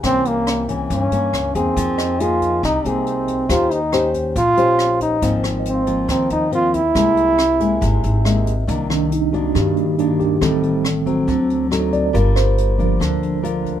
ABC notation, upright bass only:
X:1
M:4/4
L:1/8
Q:1/4=139
K:Cphr
V:1 name="Upright bass" clef=bass
C,,4 G,, G,, D,, =E,, | F,,4 C,, C,,3 | E,,4 B,,, B,,,3 | A,,,4 E,, E,,3 |
C,,4 ^G,,, G,,,3 | [K:Cm] C,,4 G,,4 | =A,,,4 D,,4 | G,,,4 D,,4 |]